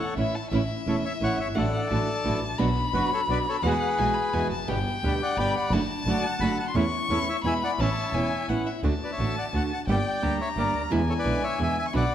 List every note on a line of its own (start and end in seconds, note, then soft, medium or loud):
0.00 0.14 A4 medium
0.00 0.14 C#5 medium
0.00 0.17 F#5 medium
0.16 0.31 A1 medium
0.16 0.34 E3 medium
0.16 0.34 A3 medium
0.16 0.32 A3 soft
0.16 0.34 C#4 medium
0.16 0.32 C#4 soft
0.16 0.35 E4 medium
0.16 0.32 E4 medium
0.16 0.37 E5 medium
0.35 0.51 A5 medium
0.51 0.67 A1 medium
0.51 0.61 E3 medium
0.51 0.61 A3 medium
0.51 0.67 A3 medium
0.51 0.61 C#4 medium
0.51 0.67 C#4 medium
0.51 0.67 E4 medium
0.51 0.61 E4 medium
0.51 1.57 E5 medium
0.86 1.02 E1 medium
0.86 1.04 E3 medium
0.86 1.04 A3 medium
0.86 1.02 A3 soft
0.86 1.04 C#4 medium
0.86 1.02 C#4 soft
0.86 1.04 E4 medium
0.86 1.02 E4 medium
0.86 0.96 A4 medium
0.86 0.96 C#5 medium
1.05 1.13 C#5 medium
1.05 1.13 E5 medium
1.21 1.36 A1 soft
1.21 1.38 E3 medium
1.21 1.38 A3 medium
1.21 1.37 A3 soft
1.21 1.39 C#4 medium
1.21 1.37 C#4 soft
1.21 1.39 E4 medium
1.21 1.37 E4 soft
1.21 1.39 C#5 medium
1.21 1.39 F#5 medium
1.39 1.56 G1 medium
1.39 1.48 C#5 medium
1.39 1.48 E5 medium
1.55 1.71 A1 medium
1.55 1.65 E3 medium
1.55 1.71 F#3 medium
1.55 1.65 A3 medium
1.55 1.65 D4 medium
1.55 1.71 D4 medium
1.55 1.71 E4 medium
1.55 1.65 F#4 medium
1.55 2.39 A4 medium
1.55 2.40 D5 medium
1.55 1.89 F#5 medium
1.89 2.06 A1 medium
1.89 2.07 E3 medium
1.89 2.06 F#3 soft
1.89 2.08 A3 medium
1.89 2.08 D4 medium
1.89 2.06 D4 soft
1.89 2.06 E4 medium
1.89 2.08 F#4 medium
1.89 2.60 A5 medium
2.24 2.40 A1 medium
2.24 2.41 E3 medium
2.24 2.40 F#3 soft
2.24 2.42 A3 medium
2.24 2.42 D4 medium
2.24 2.40 D4 soft
2.24 2.40 E4 medium
2.24 2.42 F#4 medium
2.42 2.58 A1 medium
2.58 2.74 B1 medium
2.58 2.68 B2 medium
2.58 2.68 F#3 medium
2.58 2.68 B3 medium
2.58 2.74 B3 medium
2.58 2.69 D4 medium
2.58 2.74 D4 medium
2.58 2.69 F#4 loud
2.58 2.74 F#4 medium
2.58 3.64 B5 loud
2.93 3.09 F#1 medium
2.93 3.10 B2 medium
2.93 3.11 F#3 medium
2.93 3.11 B3 medium
2.93 3.09 B3 soft
2.93 3.11 D4 medium
2.93 3.09 D4 soft
2.93 3.11 F#4 medium
2.93 3.09 F#4 medium
2.93 3.11 F#4 medium
2.93 3.10 B4 medium
3.13 3.21 A4 medium
3.13 3.20 C#5 medium
3.28 3.43 B1 medium
3.28 3.45 B2 medium
3.28 3.46 F#3 medium
3.28 3.46 B3 medium
3.28 3.44 B3 soft
3.28 3.46 D4 medium
3.28 3.44 D4 soft
3.28 3.46 F#4 medium
3.28 3.44 F#4 medium
3.28 3.39 B4 medium
3.28 3.38 D5 medium
3.49 3.57 A4 medium
3.49 3.56 C#5 medium
3.62 3.78 E2 medium
3.62 3.73 B2 medium
3.62 3.73 E3 medium
3.62 3.73 G#3 medium
3.62 3.79 G#3 medium
3.62 3.73 B3 medium
3.62 3.79 E4 medium
3.62 3.79 F#4 medium
3.62 3.73 F#4 loud
3.62 4.48 G#4 medium
3.62 4.00 F#5 medium
3.66 4.48 B4 medium
3.98 4.13 B1 medium
3.98 4.15 B2 medium
3.98 4.15 E3 medium
3.98 4.16 G#3 medium
3.98 4.14 G#3 soft
3.98 4.16 B3 medium
3.98 4.14 E4 soft
3.98 4.16 F#4 medium
3.98 4.14 F#4 medium
3.98 4.16 G#5 medium
4.14 4.35 B5 medium
4.33 4.48 E2 medium
4.33 4.50 B2 medium
4.33 4.50 E3 medium
4.33 4.51 G#3 medium
4.33 4.49 G#3 soft
4.33 4.51 B3 medium
4.33 4.49 E4 soft
4.33 4.51 F#4 medium
4.33 4.49 F#4 soft
4.33 4.51 G#5 medium
4.51 4.68 F1 medium
4.51 4.70 A5 medium
4.67 4.83 G1 medium
4.67 4.77 B2 medium
4.67 4.77 D3 medium
4.67 4.77 G3 medium
4.67 4.77 B3 medium
4.67 4.84 B3 medium
4.67 4.84 D4 medium
4.67 4.77 G4 medium
4.67 4.84 G4 medium
4.67 5.39 G5 medium
5.03 5.18 D2 medium
5.03 5.20 B2 medium
5.03 5.20 D3 medium
5.03 5.21 G3 medium
5.03 5.21 B3 medium
5.03 5.19 B3 soft
5.03 5.19 D4 soft
5.03 5.21 G4 medium
5.03 5.19 G4 soft
5.03 5.12 B4 medium
5.03 5.14 D5 medium
5.22 5.38 D5 medium
5.22 5.38 F#5 medium
5.38 5.52 G1 medium
5.38 5.55 B2 medium
5.38 5.55 D3 medium
5.38 5.55 G3 medium
5.38 5.55 B3 medium
5.38 5.54 B3 soft
5.38 5.54 D4 soft
5.38 5.55 G4 medium
5.38 5.54 G4 soft
5.38 5.55 D5 medium
5.38 5.55 G5 medium
5.38 5.74 B5 medium
5.56 5.72 D5 medium
5.56 5.72 F#5 medium
5.71 5.86 F#1 medium
5.71 5.81 D3 medium
5.71 5.81 F#3 medium
5.71 5.87 A3 medium
5.71 5.82 A3 medium
5.71 5.82 D4 medium
5.71 5.87 D4 medium
5.71 5.82 F#4 loud
5.71 5.87 F#4 medium
5.71 6.67 A5 loud
6.05 6.20 F#1 medium
6.05 6.24 D3 medium
6.05 6.24 F#3 medium
6.05 6.24 A3 medium
6.05 6.22 A3 soft
6.05 6.22 D4 soft
6.05 6.24 D4 medium
6.05 6.24 F#4 medium
6.05 6.22 F#4 medium
6.09 6.25 D5 medium
6.09 6.24 F#5 medium
6.24 6.41 F#5 medium
6.24 6.40 A5 medium
6.40 6.55 F#1 medium
6.40 6.58 D3 medium
6.40 6.58 F#3 medium
6.40 6.59 A3 medium
6.40 6.56 A3 soft
6.40 6.59 D4 medium
6.40 6.56 D4 soft
6.40 6.56 F#4 medium
6.40 6.59 F#4 medium
6.40 6.58 F#5 medium
6.40 6.57 B5 loud
6.59 6.68 F#5 medium
6.59 6.66 A5 medium
6.68 6.76 C6 medium
6.75 6.90 E2 medium
6.75 6.84 E3 medium
6.75 6.85 A3 medium
6.75 6.91 A3 medium
6.75 6.85 C#4 medium
6.75 6.91 C#4 medium
6.75 6.85 E4 medium
6.75 6.91 E4 medium
6.75 7.44 C#6 loud
7.09 7.24 E2 medium
7.09 7.27 E3 medium
7.09 7.27 A3 medium
7.09 7.25 A3 medium
7.09 7.27 C#4 medium
7.09 7.25 C#4 soft
7.09 7.27 E4 medium
7.09 7.25 E4 medium
7.09 7.19 A4 medium
7.09 7.19 C#5 medium
7.29 7.37 C#5 medium
7.29 7.36 E5 medium
7.44 7.59 E2 soft
7.44 7.61 B2 medium
7.44 7.61 E3 medium
7.44 7.61 G#3 medium
7.44 7.59 G#3 soft
7.44 7.62 B3 medium
7.44 7.59 B3 soft
7.44 7.62 E4 medium
7.44 7.59 E4 medium
7.44 7.54 E5 medium
7.44 7.54 G#5 medium
7.44 7.82 B5 medium
7.63 7.72 D5 medium
7.63 7.71 F#5 medium
7.78 7.94 A1 medium
7.78 7.88 E3 medium
7.78 7.94 A3 medium
7.78 7.88 B3 medium
7.78 7.94 B3 medium
7.78 7.88 C#4 medium
7.78 7.94 C#4 medium
7.78 7.88 E4 medium
7.78 8.46 C#5 medium
7.78 8.46 E5 medium
7.78 8.16 A5 medium
8.13 8.28 E1 medium
8.13 8.31 E3 medium
8.13 8.29 A3 soft
8.13 8.31 B3 medium
8.13 8.29 B3 soft
8.13 8.31 C#4 medium
8.13 8.29 C#4 medium
8.13 8.32 E4 medium
8.13 8.51 G#5 medium
8.49 8.64 A1 soft
8.49 8.66 E3 medium
8.49 8.64 A3 soft
8.49 8.66 B3 medium
8.49 8.64 B3 soft
8.49 8.66 C#4 medium
8.49 8.64 C#4 medium
8.49 8.66 E4 medium
8.49 8.68 F#5 medium
8.66 8.84 E5 medium
8.83 8.98 D2 medium
8.83 8.93 D3 medium
8.83 8.93 A3 medium
8.83 8.93 D4 medium
8.83 8.93 F#4 medium
8.83 9.85 A5 medium
9.04 9.11 B4 medium
9.04 9.11 D5 medium
9.12 9.36 C#5 medium
9.12 9.35 E5 medium
9.18 9.33 A1 medium
9.18 9.36 D3 medium
9.18 9.36 A3 medium
9.18 9.36 D4 medium
9.18 9.36 F#4 medium
9.38 9.46 D5 medium
9.38 9.45 F#5 medium
9.53 9.68 D2 soft
9.53 9.70 D3 medium
9.53 9.71 A3 medium
9.53 9.71 D4 medium
9.53 9.71 F#4 medium
9.53 9.63 F#5 medium
9.53 9.64 A5 medium
9.73 9.80 F#5 medium
9.73 9.80 A5 medium
9.88 10.03 G1 medium
9.88 9.97 D3 medium
9.88 9.97 G3 medium
9.88 9.98 A#3 medium
9.88 9.98 D4 medium
9.88 9.98 G4 medium
9.88 10.38 D5 medium
9.88 10.25 G5 medium
9.88 10.37 G5 medium
10.22 10.37 D2 medium
10.22 10.39 D3 medium
10.22 10.39 G3 medium
10.22 10.39 A#3 medium
10.22 10.40 D4 medium
10.22 10.40 G4 medium
10.22 10.93 A#5 medium
10.41 10.49 C#5 medium
10.41 10.49 E5 medium
10.56 10.71 G1 soft
10.56 10.73 D3 medium
10.56 10.74 G3 medium
10.56 10.74 A#3 medium
10.56 10.74 D4 medium
10.56 10.74 G4 medium
10.56 10.82 A#4 medium
10.56 10.82 D5 medium
10.74 10.90 D2 medium
10.90 11.06 E2 medium
10.90 11.00 B2 medium
10.90 11.00 D3 medium
10.90 11.00 G#3 medium
10.90 11.00 B3 medium
10.90 11.00 E4 loud
10.90 11.87 G#5 medium
11.10 11.13 A4 medium
11.10 11.13 C#5 medium
11.19 11.42 B4 medium
11.19 11.45 D5 medium
11.24 11.40 B1 medium
11.24 11.42 B2 medium
11.24 11.42 D3 medium
11.24 11.42 G#3 medium
11.24 11.42 B3 medium
11.24 11.42 E4 medium
11.44 11.59 C#5 medium
11.44 11.59 E5 medium
11.59 11.74 E2 medium
11.59 11.76 B2 medium
11.59 11.76 D3 medium
11.59 11.77 G#3 medium
11.59 11.77 B3 medium
11.59 11.77 E4 medium
11.59 11.77 E5 medium
11.63 11.77 G#5 medium
11.79 11.86 E5 medium
11.79 11.86 G#5 medium
11.87 11.95 C#6 medium
11.93 12.09 B1 medium
11.93 12.03 B2 medium
11.93 12.03 D3 medium
11.93 12.03 B3 medium
11.93 12.04 D4 loud
11.93 12.04 F#4 medium
11.93 12.15 D5 medium
11.93 12.15 F#5 medium
11.93 12.15 B5 medium